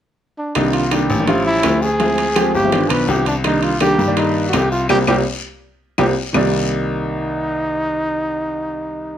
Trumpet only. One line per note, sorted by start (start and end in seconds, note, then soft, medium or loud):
0.38 0.56 D4 medium
0.55 0.75 D#4 medium
0.73 0.93 F4 medium
0.92 1.27 G4 medium
1.28 1.45 F4 medium
1.46 1.84 E4 medium
1.82 2.54 G#4 medium
2.55 2.92 G4 medium
2.91 3.08 B4 medium
3.09 3.25 G4 medium
3.28 3.36 D4 medium
3.46 3.65 D#4 medium
3.63 3.80 F4 medium
3.81 4.15 G4 loud
4.18 4.47 D#4 medium
4.49 4.55 F#4 medium
4.54 4.71 G4 medium
4.72 4.88 F4 medium
4.89 4.98 G4 medium
5.08 5.17 G4 medium
5.99 6.07 G4 medium
6.36 9.18 D#4 medium